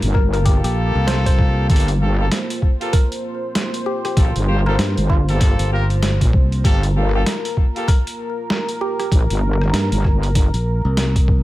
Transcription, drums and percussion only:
0.02 closed hi-hat medium
0.15 kick medium
0.15 cross-stick soft
0.34 closed hi-hat soft
0.46 kick loud
0.46 closed hi-hat medium
0.64 closed hi-hat medium
1.08 snare loud
1.08 closed hi-hat medium
1.26 kick medium
1.26 closed hi-hat medium
1.39 kick loud
1.70 kick loud
1.70 closed hi-hat medium
1.76 closed hi-hat medium
1.80 closed hi-hat medium
1.88 closed hi-hat medium
2.32 snare loud
2.32 closed hi-hat medium
2.50 closed hi-hat medium
2.62 kick medium
2.81 closed hi-hat soft
2.93 kick loud
2.93 closed hi-hat medium
3.12 closed hi-hat medium
3.55 snare loud
3.55 closed hi-hat medium
3.74 closed hi-hat medium
4.05 cross-stick medium
4.05 closed hi-hat soft
4.17 kick loud
4.17 closed hi-hat medium
4.36 closed hi-hat medium
4.67 cross-stick medium
4.79 snare loud
4.79 closed hi-hat medium
4.98 closed hi-hat medium
5.10 kick medium
5.10 cross-stick soft
5.29 closed hi-hat soft
5.41 kick loud
5.41 closed hi-hat medium
5.59 closed hi-hat medium
5.90 closed hi-hat soft
6.03 snare loud
6.03 closed hi-hat medium
6.21 kick medium
6.21 closed hi-hat medium
6.33 kick loud
6.52 closed hi-hat soft
6.64 kick loud
6.64 closed hi-hat medium
6.83 closed hi-hat medium
7.26 snare loud
7.26 closed hi-hat medium
7.45 closed hi-hat soft
7.57 kick medium
7.76 closed hi-hat soft
7.88 kick loud
7.88 closed hi-hat medium
8.07 closed hi-hat soft
8.50 snare loud
8.69 closed hi-hat medium
9.00 cross-stick medium
9.00 closed hi-hat soft
9.12 kick loud
9.12 closed hi-hat medium
9.30 closed hi-hat medium
9.62 cross-stick medium
9.74 snare loud
9.74 closed hi-hat medium
9.92 closed hi-hat soft
10.04 kick medium
10.04 cross-stick soft
10.23 closed hi-hat soft
10.35 kick loud
10.35 closed hi-hat medium
10.54 closed hi-hat medium
10.97 snare loud
10.97 closed hi-hat medium
11.16 kick medium
11.16 closed hi-hat medium
11.28 kick loud

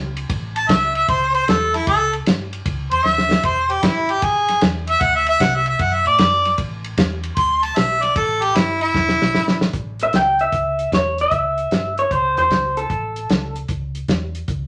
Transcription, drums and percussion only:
0.17 ride medium
0.30 kick loud
0.30 ride medium
0.56 ride medium
0.69 kick medium
0.69 snare loud
0.69 ride medium
0.95 ride medium
1.08 kick loud
1.08 ride medium
1.34 ride medium
1.48 snare loud
1.48 ride medium
1.74 snare soft
1.74 ride medium
1.87 kick loud
1.87 ride medium
2.13 ride medium
2.26 snare loud
2.26 ride medium
2.53 ride medium
2.66 kick loud
2.66 ride medium
2.91 ride medium
3.06 snare medium
3.18 snare medium
3.31 snare loud
3.43 kick loud
3.43 ride medium
3.70 ride medium
3.83 kick medium
3.83 snare loud
3.83 ride medium
4.09 ride medium
4.22 kick loud
4.22 ride medium
4.48 snare soft
4.48 ride medium
4.61 snare loud
4.61 ride medium
4.87 ride medium
5.01 kick loud
5.01 ride medium
5.26 ride medium
5.40 kick medium
5.40 snare loud
5.40 ride medium
5.66 ride medium
5.79 kick loud
5.79 ride medium
6.06 ride medium
6.18 snare loud
6.18 ride medium
6.45 snare soft
6.45 ride medium
6.58 kick loud
6.58 ride medium
6.84 ride medium
6.98 kick medium
6.98 snare loud
6.98 ride medium
7.23 ride medium
7.37 kick loud
7.37 ride medium
7.63 ride medium
7.76 snare loud
7.76 ride medium
8.02 snare soft
8.02 ride medium
8.16 kick loud
8.16 ride medium
8.42 ride medium
8.56 snare loud
8.56 ride medium
8.81 ride medium
8.94 kick loud
8.94 snare medium
9.09 snare medium
9.22 snare medium
9.35 snare medium
9.48 snare loud
9.61 snare medium
9.73 kick loud
9.73 closed hi-hat medium
9.99 closed hi-hat medium
10.13 snare loud
10.13 closed hi-hat medium
10.39 closed hi-hat medium
10.52 kick medium
10.52 closed hi-hat medium
10.79 closed hi-hat medium
10.92 kick medium
10.92 snare medium
10.92 closed hi-hat medium
11.18 closed hi-hat medium
11.31 kick loud
11.31 closed hi-hat medium
11.58 closed hi-hat medium
11.71 snare loud
11.71 closed hi-hat medium
11.98 closed hi-hat medium
12.11 kick medium
12.11 closed hi-hat medium
12.37 closed hi-hat medium
12.50 kick medium
12.50 snare medium
12.50 closed hi-hat medium
12.77 closed hi-hat medium
12.90 kick loud
12.90 closed hi-hat medium
13.16 closed hi-hat medium
13.30 snare loud
13.30 closed hi-hat medium
13.56 closed hi-hat medium
13.68 kick medium
13.68 closed hi-hat medium
13.95 closed hi-hat medium
14.08 kick medium
14.08 snare medium
14.08 closed hi-hat medium
14.35 closed hi-hat medium
14.48 kick loud
14.48 closed hi-hat medium

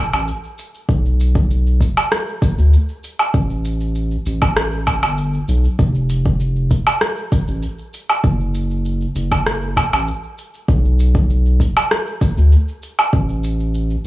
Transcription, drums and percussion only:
0.13 cabasa soft
0.13 low woodblock medium
0.28 cabasa soft
0.44 cabasa soft
0.58 cabasa medium
0.75 cabasa soft
0.89 kick loud
0.89 cabasa soft
1.06 cabasa soft
1.20 cabasa medium
1.35 kick loud
1.35 cabasa soft
1.51 cabasa soft
1.67 cabasa soft
1.81 kick medium
1.81 cabasa medium
1.97 cabasa soft
1.97 low woodblock medium
2.12 cross-stick medium
2.12 cabasa soft
2.28 cabasa soft
2.42 kick loud
2.42 cabasa medium
2.59 cabasa soft
2.73 cabasa soft
2.89 cabasa soft
3.04 cabasa medium
3.19 cabasa soft
3.19 low woodblock medium
3.34 kick loud
3.34 cabasa soft
3.50 cabasa soft
3.65 cabasa medium
3.81 cabasa soft
3.95 cabasa soft
4.11 cabasa soft
4.26 cabasa medium
4.42 kick loud
4.42 cabasa soft
4.42 low woodblock medium
4.57 cross-stick medium
4.57 cabasa soft
4.73 cabasa soft
4.87 kick medium
4.87 cabasa medium
4.87 low woodblock medium
5.03 cabasa soft
5.03 low woodblock medium
5.18 cabasa soft
5.34 cabasa soft
5.48 cabasa medium
5.64 cabasa soft
5.79 kick loud
5.79 cabasa soft
5.95 cabasa soft
6.10 cabasa medium
6.25 kick loud
6.25 cabasa soft
6.40 cabasa soft
6.56 cabasa soft
6.71 kick medium
6.71 cabasa medium
6.87 cabasa soft
6.87 low woodblock medium
7.01 cross-stick medium
7.01 cabasa soft
7.17 cabasa soft
7.32 kick loud
7.32 cabasa medium
7.48 cabasa soft
7.63 cabasa soft
7.79 cabasa soft
7.94 cabasa medium
8.10 cabasa soft
8.10 low woodblock medium
8.24 kick loud
8.24 cabasa soft
8.40 cabasa soft
8.55 cabasa medium
8.71 cabasa soft
8.85 cabasa soft
9.01 cabasa soft
9.16 cabasa medium
9.31 kick loud
9.31 cabasa soft
9.31 low woodblock medium
9.46 cross-stick medium
9.46 cabasa soft
9.62 cabasa soft
9.77 kick medium
9.77 cabasa medium
9.77 low woodblock medium
9.93 cabasa soft
9.93 low woodblock medium
10.08 cabasa soft
10.24 cabasa soft
10.38 cabasa medium
10.54 cabasa soft
10.68 kick loud
10.68 cabasa soft
10.85 cabasa soft
11.00 cabasa medium
11.15 kick loud
11.15 cabasa soft
11.30 cabasa soft
11.46 cabasa soft
11.60 kick medium
11.60 cabasa medium
11.77 cabasa soft
11.77 low woodblock medium
11.91 cross-stick medium
11.91 cabasa soft
12.07 cabasa soft
12.21 kick loud
12.21 cabasa medium
12.38 cabasa soft
12.52 cabasa soft
12.68 cabasa soft
12.83 cabasa medium
12.99 cabasa soft
12.99 low woodblock medium
13.13 kick loud
13.13 cabasa soft
13.29 cabasa soft
13.44 cabasa medium
13.60 cabasa soft
13.75 cabasa soft
13.90 cabasa soft

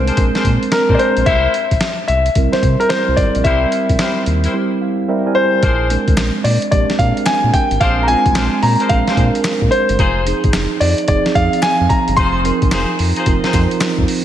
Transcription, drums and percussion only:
0.08 closed hi-hat medium
0.17 kick loud
0.17 closed hi-hat medium
0.35 snare medium
0.44 kick medium
0.44 closed hi-hat medium
0.63 closed hi-hat soft
0.72 snare loud
0.72 closed hi-hat medium
0.89 kick medium
0.99 closed hi-hat medium
1.17 closed hi-hat medium
1.26 kick loud
1.26 closed hi-hat medium
1.54 closed hi-hat medium
1.71 kick medium
1.71 closed hi-hat medium
1.81 snare loud
1.81 closed hi-hat medium
2.08 closed hi-hat medium
2.26 closed hi-hat medium
2.35 kick loud
2.35 closed hi-hat medium
2.53 snare medium
2.63 kick medium
2.63 closed hi-hat medium
2.81 closed hi-hat soft
2.90 snare loud
2.90 closed hi-hat medium
3.17 kick medium
3.17 closed hi-hat medium
3.35 closed hi-hat medium
3.45 kick loud
3.45 closed hi-hat medium
3.72 closed hi-hat medium
3.89 kick medium
3.89 closed hi-hat medium
3.99 snare loud
3.99 closed hi-hat medium
4.26 closed hi-hat medium
4.44 closed hi-hat medium
5.63 kick loud
5.63 closed hi-hat medium
5.90 closed hi-hat medium
6.08 kick medium
6.08 closed hi-hat medium
6.17 snare loud
6.17 clap medium
6.17 closed hi-hat medium
6.45 open hi-hat medium
6.62 closed hi-hat medium
6.72 kick loud
6.72 closed hi-hat medium
6.90 snare medium
6.99 kick medium
6.99 closed hi-hat medium
7.17 closed hi-hat soft
7.26 snare loud
7.26 clap medium
7.26 closed hi-hat medium
7.54 kick medium
7.54 closed hi-hat medium
7.71 closed hi-hat medium
7.81 kick loud
7.81 closed hi-hat medium
8.08 closed hi-hat medium
8.26 kick medium
8.26 closed hi-hat medium
8.35 snare loud
8.35 clap medium
8.35 closed hi-hat medium
8.63 open hi-hat medium
8.80 closed hi-hat medium
8.90 kick loud
8.90 closed hi-hat medium
9.07 snare medium
9.17 kick medium
9.17 closed hi-hat medium
9.35 closed hi-hat medium
9.44 snare loud
9.44 clap medium
9.44 closed hi-hat medium
9.62 kick medium
9.72 closed hi-hat medium
9.89 closed hi-hat medium
9.99 kick loud
9.99 closed hi-hat medium
10.27 closed hi-hat medium
10.44 kick medium
10.44 closed hi-hat medium
10.53 snare loud
10.53 clap medium
10.53 closed hi-hat medium
10.81 open hi-hat medium
10.98 closed hi-hat medium
11.08 kick loud
11.08 closed hi-hat medium
11.26 snare medium
11.35 kick medium
11.35 closed hi-hat medium
11.53 closed hi-hat medium
11.62 snare loud
11.62 clap loud
11.62 closed hi-hat medium
11.90 kick medium
11.90 closed hi-hat medium
12.08 closed hi-hat medium
12.17 kick loud
12.17 closed hi-hat medium
12.45 closed hi-hat medium
12.62 kick medium
12.62 closed hi-hat medium
12.71 snare loud
12.71 clap medium
12.71 closed hi-hat medium
12.99 open hi-hat medium
13.16 closed hi-hat medium
13.26 kick loud
13.26 closed hi-hat medium
13.44 snare medium
13.53 kick medium
13.53 clap medium
13.53 closed hi-hat medium
13.71 closed hi-hat medium
13.81 snare loud
13.81 clap medium
13.81 closed hi-hat medium
13.98 kick medium
14.08 open hi-hat medium

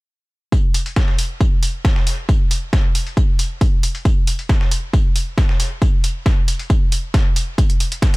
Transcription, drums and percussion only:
0.52 kick loud
0.52 tambourine medium
0.74 open hi-hat loud
0.74 tambourine medium
0.86 closed hi-hat soft
0.96 kick loud
0.96 snare loud
0.96 tambourine medium
1.08 snare medium
1.19 open hi-hat loud
1.19 tambourine medium
1.41 kick loud
1.41 tambourine medium
1.63 open hi-hat loud
1.63 tambourine medium
1.85 kick loud
1.85 snare loud
1.85 tambourine medium
1.96 snare medium
2.07 snare soft
2.07 open hi-hat loud
2.07 tambourine medium
2.29 kick loud
2.29 tambourine medium
2.51 open hi-hat loud
2.51 tambourine medium
2.73 kick loud
2.73 snare loud
2.73 tambourine medium
2.95 open hi-hat loud
2.95 tambourine medium
3.07 closed hi-hat soft
3.17 kick loud
3.17 tambourine medium
3.39 open hi-hat loud
3.39 tambourine medium
3.61 kick loud
3.61 open hi-hat medium
3.61 tambourine medium
3.83 open hi-hat loud
3.83 tambourine medium
3.95 closed hi-hat soft
4.05 kick loud
4.05 tambourine medium
4.27 open hi-hat loud
4.27 tambourine medium
4.39 closed hi-hat soft
4.49 kick loud
4.49 snare loud
4.49 tambourine medium
4.61 snare medium
4.71 open hi-hat loud
4.71 tambourine medium
4.93 kick loud
4.93 tambourine medium
5.16 open hi-hat loud
5.16 tambourine medium
5.38 kick loud
5.38 snare loud
5.38 tambourine medium
5.49 snare medium
5.60 snare soft
5.60 open hi-hat loud
5.60 tambourine medium
5.82 kick loud
5.82 tambourine medium
6.04 open hi-hat loud
6.04 tambourine medium
6.26 kick loud
6.26 snare loud
6.26 tambourine medium
6.48 open hi-hat loud
6.48 tambourine medium
6.59 closed hi-hat soft
6.70 kick loud
6.70 tambourine medium
6.92 open hi-hat loud
6.92 tambourine medium
7.14 kick loud
7.14 snare loud
7.14 open hi-hat medium
7.14 tambourine medium
7.36 open hi-hat loud
7.36 tambourine medium
7.58 kick loud
7.58 closed hi-hat medium
7.58 tambourine medium
7.70 closed hi-hat medium
7.80 open hi-hat loud
7.80 tambourine medium
7.92 closed hi-hat soft
7.92 closed hi-hat medium
8.02 kick loud
8.02 snare loud
8.02 closed hi-hat medium
8.02 tambourine medium

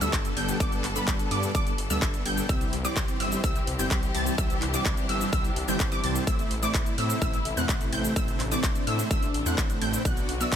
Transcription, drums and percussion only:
0.01 closed hi-hat soft
0.01 shaker medium
0.13 kick loud
0.13 clap loud
0.13 closed hi-hat loud
0.13 shaker medium
0.25 closed hi-hat soft
0.25 shaker soft
0.37 open hi-hat medium
0.49 closed hi-hat soft
0.49 shaker medium
0.60 kick loud
0.60 closed hi-hat loud
0.60 shaker medium
0.72 closed hi-hat soft
0.72 shaker soft
0.84 clap medium
0.84 open hi-hat loud
0.96 closed hi-hat soft
0.96 shaker medium
1.08 kick loud
1.08 clap loud
1.08 closed hi-hat loud
1.08 shaker medium
1.19 closed hi-hat soft
1.19 shaker soft
1.31 open hi-hat loud
1.43 closed hi-hat soft
1.43 shaker medium
1.55 kick loud
1.55 closed hi-hat loud
1.55 shaker medium
1.67 closed hi-hat soft
1.67 shaker soft
1.78 open hi-hat loud
1.90 closed hi-hat soft
1.90 shaker medium
2.02 kick loud
2.02 clap loud
2.02 closed hi-hat medium
2.02 shaker medium
2.14 closed hi-hat soft
2.14 shaker soft
2.26 open hi-hat medium
2.37 closed hi-hat soft
2.37 shaker medium
2.49 kick loud
2.49 closed hi-hat medium
2.49 shaker medium
2.61 closed hi-hat soft
2.61 shaker soft
2.73 open hi-hat loud
2.85 closed hi-hat soft
2.85 shaker medium
2.96 kick loud
2.96 clap loud
2.96 closed hi-hat medium
2.96 shaker medium
3.08 closed hi-hat soft
3.08 shaker soft
3.20 open hi-hat loud
3.32 closed hi-hat soft
3.32 shaker medium
3.44 kick loud
3.44 closed hi-hat medium
3.44 shaker medium
3.56 closed hi-hat soft
3.56 shaker soft
3.67 open hi-hat loud
3.79 closed hi-hat soft
3.79 shaker medium
3.91 kick loud
3.91 clap loud
3.91 closed hi-hat medium
3.91 shaker medium
4.03 closed hi-hat soft
4.03 shaker soft
4.15 open hi-hat loud
4.26 closed hi-hat soft
4.26 shaker medium
4.38 kick loud
4.38 closed hi-hat medium
4.38 shaker medium
4.50 closed hi-hat soft
4.50 shaker soft
4.62 clap medium
4.62 open hi-hat loud
4.74 closed hi-hat soft
4.74 shaker medium
4.85 kick loud
4.85 clap loud
4.85 closed hi-hat medium
4.85 shaker medium
4.97 closed hi-hat soft
4.97 shaker soft
5.09 open hi-hat medium
5.21 closed hi-hat soft
5.21 shaker medium
5.33 kick loud
5.33 closed hi-hat medium
5.33 shaker medium
5.45 closed hi-hat soft
5.45 shaker soft
5.56 open hi-hat loud
5.68 closed hi-hat soft
5.68 shaker medium
5.80 kick loud
5.80 clap loud
5.80 closed hi-hat medium
5.80 shaker medium
5.92 closed hi-hat soft
5.92 shaker soft
6.04 open hi-hat loud
6.15 closed hi-hat soft
6.15 shaker medium
6.27 kick loud
6.27 closed hi-hat medium
6.27 shaker medium
6.39 closed hi-hat soft
6.39 shaker soft
6.51 open hi-hat loud
6.63 closed hi-hat soft
6.63 shaker medium
6.74 kick loud
6.74 clap loud
6.74 closed hi-hat medium
6.74 shaker medium
6.86 closed hi-hat soft
6.86 shaker soft
6.98 open hi-hat loud
7.10 closed hi-hat soft
7.10 shaker medium
7.22 kick loud
7.22 closed hi-hat medium
7.22 shaker medium
7.33 closed hi-hat soft
7.33 shaker soft
7.45 open hi-hat loud
7.57 closed hi-hat soft
7.57 shaker medium
7.69 kick loud
7.69 clap loud
7.69 closed hi-hat medium
7.69 shaker medium
7.81 closed hi-hat soft
7.81 shaker soft
7.93 open hi-hat loud
8.04 closed hi-hat soft
8.04 shaker medium
8.16 kick loud
8.16 closed hi-hat loud
8.16 shaker medium
8.28 closed hi-hat soft
8.28 shaker soft
8.40 clap medium
8.40 open hi-hat loud
8.52 closed hi-hat soft
8.52 shaker medium
8.63 kick loud
8.63 clap loud
8.63 closed hi-hat medium
8.63 shaker medium
8.75 closed hi-hat soft
8.75 shaker soft
8.87 open hi-hat medium
8.99 closed hi-hat soft
8.99 shaker medium
9.11 kick loud
9.11 closed hi-hat medium
9.11 shaker medium
9.23 closed hi-hat soft
9.23 shaker soft
9.34 open hi-hat loud
9.46 closed hi-hat soft
9.46 shaker medium
9.58 kick loud
9.58 clap loud
9.58 closed hi-hat medium
9.58 shaker medium
9.70 closed hi-hat soft
9.70 shaker soft
9.82 open hi-hat medium
9.93 closed hi-hat soft
9.93 shaker medium
10.05 kick loud
10.05 closed hi-hat medium
10.05 shaker medium
10.17 closed hi-hat soft
10.17 shaker soft
10.29 open hi-hat loud
10.41 closed hi-hat soft
10.41 shaker medium
10.52 kick loud
10.52 clap loud
10.52 closed hi-hat loud
10.52 shaker medium

